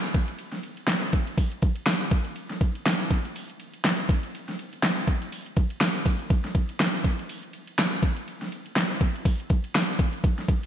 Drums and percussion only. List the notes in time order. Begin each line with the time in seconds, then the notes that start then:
0.04 ride
0.14 kick, ride
0.28 ride
0.39 ride
0.52 snare, ride
0.63 ride
0.77 ride
0.87 snare, clap, ride
1.01 ride
1.13 kick, ride
1.27 ride
1.38 kick, ride
1.52 ride
1.62 kick, ride
1.76 ride
1.86 snare, clap, ride
2.00 ride
2.11 kick, ride
2.25 ride
2.36 ride
2.50 snare, ride
2.61 kick, ride
2.75 ride
2.86 snare, clap, ride
3.00 ride
3.11 kick, ride
3.25 ride
3.36 ride
3.50 ride
3.60 ride
3.74 ride
3.84 snare, clap, ride
3.99 ride
4.09 kick, ride
4.23 ride
4.35 ride
4.48 snare, ride
4.59 ride
4.73 ride
4.83 snare, clap, ride
4.96 ride
5.07 kick, ride
5.22 ride
5.32 ride
5.46 ride
5.56 kick, ride
5.70 ride
5.80 snare, clap, ride
5.95 ride
6.06 kick, open hi-hat, ride
6.19 ride
6.30 kick, ride
6.44 snare, ride
6.55 kick, ride
6.69 ride
6.79 snare, clap, ride
6.94 ride
7.04 kick, ride
7.19 ride
7.29 ride
7.43 ride
7.53 ride
7.67 ride
7.78 snare, clap, ride
7.92 ride
8.03 kick, ride
8.17 ride
8.28 ride
8.41 snare, ride
8.52 ride
8.66 ride
8.76 snare, clap, ride
8.89 ride
9.01 kick, ride
9.16 ride
9.25 kick, ride
9.40 ride
9.50 kick, ride
9.64 ride
9.75 snare, clap, ride
9.89 ride
9.99 kick, ride
10.13 ride
10.24 kick, ride
10.38 snare, ride
10.48 kick, ride
10.63 ride